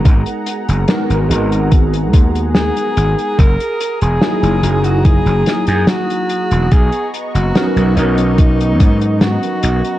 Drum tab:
HH |xxxxxxxxxxxxxxxx|xxxxxxxxxxxxxxxx|xxxxxxxxxxxxxxxx|
SD |----o-------o---|----o-----o-o---|----o-------o---|
BD |o-------o-o-----|o-------o-------|o-------o-o-----|